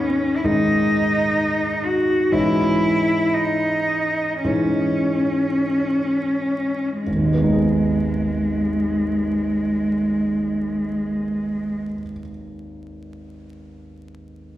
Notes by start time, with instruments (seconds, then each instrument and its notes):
Already playing: grand piano G#2 D#3 G#3 D#4
0.00 cello C#4
0.37 cello E4
0.44 grand piano G#2 D#3 G#3 D#4, cello D#4
1.84 cello F#4
2.31 grand piano G#2 E3 G#3 C#4, cello E4
3.34 cello D#4
4.44 grand piano G#2 E3 G#3 C#4, cello C#4
7.03 grand piano G#1, cello G#3
7.16 grand piano D#2
7.25 grand piano G#3
7.34 grand piano B3
7.43 grand piano D#4
7.53 grand piano G#4